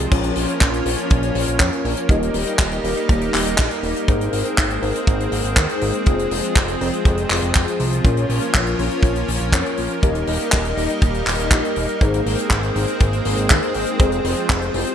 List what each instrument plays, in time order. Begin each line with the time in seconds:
Already playing: analog synth pad F3
0.11 analog synth bass A#1, analog synth pad A#3 C#4, tine electric piano C#4 F4 A#4 C#5, kick, closed hi-hat, crash
0.23 closed hi-hat
0.36 analog synth bass A#1, open hi-hat
0.49 closed hi-hat
0.61 analog synth bass A#1, kick, clap, closed hi-hat
0.74 closed hi-hat
0.86 analog synth bass A#1, tine electric piano C#4 F4 A#4 C#5, open hi-hat
0.98 closed hi-hat
1.10 analog synth bass A#1, kick, closed hi-hat
1.23 closed hi-hat
1.35 analog synth bass A#1, open hi-hat
1.48 analog synth bass A#1, closed hi-hat
1.60 analog synth bass F2, tine electric piano C#4 F4 A#4 C#5, kick, clap, closed hi-hat
1.73 closed hi-hat
1.85 analog synth bass A#1, open hi-hat
1.97 closed hi-hat
2.09 analog synth bass D#1, analog synth pad G3 D#4, tine electric piano D#4 G4 A#4 D#5, kick, closed hi-hat
2.23 closed hi-hat
2.34 analog synth bass D#1, open hi-hat
2.47 closed hi-hat
2.59 analog synth bass D#1, kick, clap, closed hi-hat
2.71 closed hi-hat
2.84 analog synth bass D#1, tine electric piano D#4 G4 A#4 D#5, open hi-hat
2.97 closed hi-hat
3.09 analog synth bass D#1, kick, closed hi-hat
3.21 closed hi-hat
3.34 analog synth bass D#1, clap, open hi-hat
3.46 analog synth bass D#1, closed hi-hat
3.58 analog synth bass A#1, tine electric piano D#4 G4 A#4 D#5, kick, clap, closed hi-hat
3.71 closed hi-hat
3.83 analog synth bass D#1, open hi-hat
3.96 closed hi-hat
4.08 analog synth bass G#1, analog synth pad G#3 C4, tine electric piano D#4 G#4 A#4 C5, kick, closed hi-hat
4.21 closed hi-hat
4.33 analog synth bass G#1, open hi-hat
4.45 closed hi-hat
4.57 analog synth bass G#1, kick, clap, closed hi-hat
4.70 closed hi-hat
4.82 analog synth bass G#1, tine electric piano D#4 G#4 A#4 C5, open hi-hat
4.95 closed hi-hat
5.07 analog synth bass G#1, kick, closed hi-hat
5.20 closed hi-hat
5.32 analog synth bass G#1, open hi-hat
5.44 analog synth bass G#1, closed hi-hat
5.56 analog synth bass D#2, tine electric piano D#4 G#4 A#4 C5, kick, clap, closed hi-hat
5.69 closed hi-hat
5.81 analog synth bass G#1, open hi-hat
5.93 closed hi-hat
6.06 analog synth bass F1, analog synth pad F3, tine electric piano C4 F4 G#4 C5, kick, closed hi-hat
6.19 closed hi-hat
6.31 analog synth bass F1, open hi-hat
6.44 closed hi-hat
6.55 analog synth bass F1, kick, clap, closed hi-hat
6.68 closed hi-hat
6.81 analog synth bass F1, tine electric piano C4 F4 G#4 C5, open hi-hat
6.93 closed hi-hat
7.05 analog synth bass F1, kick, closed hi-hat
7.17 closed hi-hat
7.30 analog synth bass F1, clap, open hi-hat
7.42 analog synth bass F1, closed hi-hat
7.54 analog synth bass F1, tine electric piano C4 F4 G#4 C5, kick, clap, closed hi-hat
7.68 closed hi-hat
7.80 analog synth bass C2, open hi-hat
7.92 closed hi-hat
8.04 analog synth bass A#1, analog synth pad A#3 C#4, tine electric piano C#4 F4 A#4 C#5, kick, closed hi-hat
8.17 closed hi-hat
8.29 analog synth bass A#1, open hi-hat
8.42 closed hi-hat
8.54 analog synth bass A#1, kick, clap, closed hi-hat
8.67 closed hi-hat
8.79 analog synth bass A#1, tine electric piano C#4 F4 A#4 C#5, open hi-hat
8.91 closed hi-hat
9.03 analog synth bass A#1, kick, closed hi-hat
9.16 closed hi-hat
9.28 analog synth bass A#1, open hi-hat
9.40 analog synth bass A#1, closed hi-hat
9.53 analog synth bass F2, tine electric piano C#4 F4 A#4 C#5, kick, clap, closed hi-hat
9.66 closed hi-hat
9.77 analog synth bass A#1, open hi-hat
9.91 closed hi-hat
10.03 analog synth bass D#1, analog synth pad G3 D#4, tine electric piano D#4 G4 A#4 D#5, kick, closed hi-hat
10.15 closed hi-hat
10.27 analog synth bass D#1, open hi-hat
10.41 closed hi-hat
10.52 analog synth bass D#1, kick, clap
10.65 closed hi-hat
10.77 analog synth bass D#1, tine electric piano D#4 G4 A#4 D#5, open hi-hat
10.90 closed hi-hat
11.02 analog synth bass D#1, kick, closed hi-hat
11.14 closed hi-hat
11.27 analog synth bass D#1, clap, open hi-hat
11.39 analog synth bass D#1, closed hi-hat
11.51 analog synth bass A#1, tine electric piano D#4 G4 A#4 D#5, kick, clap, closed hi-hat
11.65 closed hi-hat
11.76 analog synth bass D#1, open hi-hat
11.89 closed hi-hat
12.01 analog synth bass G#1, analog synth pad G#3 C4, tine electric piano D#4 G#4 A#4 C5, kick, closed hi-hat
12.14 closed hi-hat
12.26 analog synth bass G#1, open hi-hat
12.39 closed hi-hat
12.50 analog synth bass G#1, kick, clap, closed hi-hat
12.63 closed hi-hat
12.76 analog synth bass G#1, tine electric piano D#4 G#4 A#4 C5, open hi-hat
12.88 closed hi-hat
13.00 analog synth bass G#1, kick, closed hi-hat
13.13 closed hi-hat
13.25 analog synth bass G#1, open hi-hat
13.37 analog synth bass G#1, closed hi-hat
13.49 analog synth bass D#2, tine electric piano D#4 G#4 A#4 C5, kick, clap, closed hi-hat
13.63 closed hi-hat
13.74 analog synth bass G#1, open hi-hat
13.87 closed hi-hat
14.00 analog synth bass F1, analog synth pad F3, tine electric piano C4 F4 G#4 C5, kick, closed hi-hat
14.12 closed hi-hat
14.24 analog synth bass F1, open hi-hat
14.37 closed hi-hat
14.49 analog synth bass F1, kick, clap, closed hi-hat
14.62 closed hi-hat
14.74 analog synth bass F1, tine electric piano C4 E4 G4 C5, open hi-hat
14.87 closed hi-hat